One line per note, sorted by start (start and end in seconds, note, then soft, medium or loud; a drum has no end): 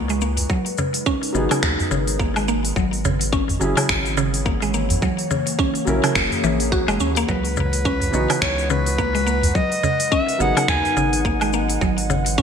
0.00 0.46 C#2 loud
0.00 0.50 C#3 medium
0.00 0.48 E3 medium
0.00 0.50 E3 medium
0.00 5.03 G#3 medium
0.00 0.48 B3 medium
0.00 0.49 D#4 medium
0.00 0.50 F#4 medium
0.00 5.03 B4 loud
0.00 2.76 F#5 medium
0.09 0.21 G#3 medium
0.09 open hi-hat soft
0.09 cabasa soft
0.21 0.49 A#3 medium
0.21 cabasa medium
0.37 open hi-hat medium
0.37 udu medium
0.37 cabasa soft
0.50 0.65 F#3 medium
0.50 kick loud
0.50 cabasa soft
0.65 2.76 D#4 medium
0.65 open hi-hat soft
0.65 cabasa soft
0.72 2.76 A#4 medium
0.78 0.94 C#3 medium
0.78 udu medium
0.78 cabasa medium
0.94 open hi-hat medium
0.94 cabasa soft
1.06 1.33 C#4 loud
1.06 kick loud
1.06 cabasa soft
1.23 open hi-hat soft
1.23 cabasa soft
1.33 1.48 G#1 medium
1.33 1.49 C#3 medium
1.33 2.74 F#3 medium
1.33 2.74 B3 medium
1.33 2.75 D#4 medium
1.33 cabasa medium
1.37 2.76 G#4 medium
1.51 1.90 C#3 medium
1.51 open hi-hat medium
1.51 cabasa soft
1.51 low woodblock medium
1.63 1.77 D#2 medium
1.63 finger snap medium
1.63 kick loud
1.63 cabasa soft
1.79 open hi-hat soft
1.79 udu medium
1.79 cabasa soft
1.91 2.73 G#1 medium
1.91 2.07 C#3 loud
1.91 cabasa medium
2.07 open hi-hat medium
2.07 cabasa soft
2.19 2.34 A#3 medium
2.19 kick loud
2.19 cabasa soft
2.36 2.47 G#3 medium
2.36 open hi-hat soft
2.36 cabasa soft
2.36 low woodblock medium
2.48 2.75 A#3 medium
2.48 cabasa medium
2.65 open hi-hat medium
2.65 cabasa soft
2.76 3.58 G#1 medium
2.76 2.92 F#3 medium
2.76 kick loud
2.76 cabasa soft
2.93 open hi-hat soft
2.93 cabasa soft
3.05 3.20 C#3 medium
3.05 9.56 E3 medium
3.05 udu medium
3.05 cabasa medium
3.21 open hi-hat medium
3.21 cabasa soft
3.32 3.60 C#4 loud
3.32 kick loud
3.32 cabasa soft
3.49 8.04 C#5 loud
3.49 open hi-hat soft
3.49 udu medium
3.49 cabasa soft
3.59 3.75 F#1 loud
3.59 3.76 C#3 medium
3.59 5.00 F#3 medium
3.59 5.01 C#4 medium
3.59 5.02 E4 medium
3.59 12.42 F#5 medium
3.59 cabasa medium
3.64 5.02 G#4 medium
3.77 4.16 C#3 loud
3.77 open hi-hat medium
3.77 cabasa soft
3.77 low woodblock medium
3.89 4.99 G#1 loud
3.89 finger snap medium
3.89 kick loud
3.89 cabasa soft
4.05 open hi-hat soft
4.05 cabasa soft
4.17 4.33 C#3 loud
4.17 cabasa medium
4.34 open hi-hat medium
4.34 cabasa soft
4.46 4.61 A#3 medium
4.46 kick loud
4.46 cabasa soft
4.62 4.73 G#3 medium
4.62 open hi-hat soft
4.62 cabasa soft
4.74 5.01 A#3 medium
4.74 cabasa medium
4.90 open hi-hat medium
4.90 udu loud
4.90 cabasa soft
5.02 5.18 F#3 medium
5.02 7.29 A#3 medium
5.02 kick loud
5.02 cabasa soft
5.18 open hi-hat soft
5.18 cabasa soft
5.31 5.46 C#3 medium
5.31 udu medium
5.31 cabasa medium
5.47 open hi-hat medium
5.47 cabasa soft
5.59 5.86 C#4 medium
5.59 kick loud
5.59 cabasa soft
5.73 8.20 G#4 loud
5.73 open hi-hat soft
5.73 cabasa soft
5.85 6.01 A#1 medium
5.85 6.02 C#3 medium
5.85 7.26 F#3 medium
5.85 7.27 C#4 medium
5.85 7.28 E4 medium
5.85 cabasa medium
5.89 7.28 A#4 medium
6.04 6.43 C#3 loud
6.04 open hi-hat medium
6.04 cabasa soft
6.04 low woodblock medium
6.15 6.29 F#1 medium
6.15 finger snap medium
6.15 kick loud
6.15 cabasa soft
6.32 open hi-hat soft
6.32 udu loud
6.32 cabasa soft
6.44 6.88 A#1 medium
6.44 6.59 E3 loud
6.44 cabasa medium
6.60 open hi-hat medium
6.60 cabasa soft
6.72 6.87 F#4 loud
6.72 kick loud
6.72 cabasa soft
6.88 6.98 F#1 loud
6.88 6.99 G#3 loud
6.88 open hi-hat soft
6.88 cabasa soft
6.88 low woodblock medium
7.00 7.25 D#2 medium
7.00 7.16 C#4 medium
7.00 cabasa medium
7.16 7.24 A#3 loud
7.16 open hi-hat medium
7.16 cabasa soft
7.28 8.11 C#2 loud
7.28 9.55 C#3 medium
7.28 7.44 F#3 medium
7.28 8.43 B4 loud
7.28 kick loud
7.28 cabasa soft
7.45 open hi-hat soft
7.45 cabasa soft
7.50 12.42 G#3 medium
7.57 7.73 C#3 medium
7.57 udu medium
7.57 cabasa medium
7.73 open hi-hat medium
7.73 cabasa soft
7.85 8.13 C#4 loud
7.85 kick loud
7.85 cabasa soft
8.01 12.42 B4 medium
8.01 open hi-hat soft
8.01 udu medium
8.01 cabasa soft
8.11 8.27 B1 medium
8.11 8.28 C#3 medium
8.11 9.53 E3 medium
8.11 9.53 B3 medium
8.11 9.54 D#4 medium
8.11 9.54 F#4 medium
8.11 cabasa medium
8.30 8.69 C#3 loud
8.30 open hi-hat medium
8.30 cabasa soft
8.30 low woodblock medium
8.41 9.52 C#2 medium
8.41 8.71 C#5 medium
8.41 finger snap medium
8.41 kick loud
8.41 cabasa soft
8.58 open hi-hat soft
8.58 cabasa soft
8.70 8.86 C#3 loud
8.70 9.56 B4 loud
8.70 cabasa medium
8.86 open hi-hat medium
8.86 cabasa soft
8.98 9.13 A#3 medium
8.98 kick loud
8.98 cabasa soft
9.15 9.26 G#3 medium
9.15 open hi-hat soft
9.15 cabasa soft
9.27 9.54 A#3 medium
9.27 cabasa medium
9.43 open hi-hat medium
9.43 udu medium
9.43 cabasa soft
9.55 9.71 F#3 medium
9.55 10.14 D#5 loud
9.55 kick loud
9.55 cabasa soft
9.72 open hi-hat soft
9.72 cabasa soft
9.77 11.82 A#4 medium
9.83 9.99 C#3 loud
9.83 11.82 D#4 medium
9.83 udu medium
9.83 cabasa medium
10.00 open hi-hat medium
10.00 cabasa soft
10.12 10.39 C#4 loud
10.12 10.43 E5 loud
10.12 kick loud
10.12 cabasa soft
10.29 open hi-hat soft
10.29 cabasa soft
10.38 10.54 G#1 loud
10.38 10.55 C#3 medium
10.38 11.79 F#3 medium
10.38 11.80 B3 medium
10.38 11.81 D#4 medium
10.38 11.81 G#4 medium
10.38 10.69 F#5 loud
10.38 cabasa medium
10.57 10.96 C#3 loud
10.57 open hi-hat medium
10.57 cabasa soft
10.57 low woodblock medium
10.68 10.82 D#2 medium
10.68 11.22 G#5 loud
10.68 finger snap medium
10.68 kick loud
10.68 cabasa soft
10.85 open hi-hat soft
10.85 udu medium
10.85 cabasa soft
10.97 11.79 G#1 medium
10.97 11.12 C#3 loud
10.97 cabasa medium
11.13 open hi-hat medium
11.13 cabasa soft
11.25 11.40 A#3 medium
11.25 kick loud
11.25 cabasa soft
11.41 11.52 G#3 medium
11.41 open hi-hat soft
11.41 cabasa soft
11.41 low woodblock medium
11.53 11.81 A#3 medium
11.53 cabasa medium
11.70 open hi-hat medium
11.70 cabasa soft
11.81 12.42 G#1 loud
11.81 11.97 F#3 medium
11.81 kick loud
11.81 cabasa soft
11.91 12.42 E3 medium
11.98 open hi-hat soft
11.98 cabasa soft
12.10 12.26 C#3 loud
12.10 udu medium
12.10 cabasa medium
12.26 open hi-hat medium
12.26 cabasa soft
12.38 12.42 C#4 loud
12.38 kick loud
12.38 cabasa soft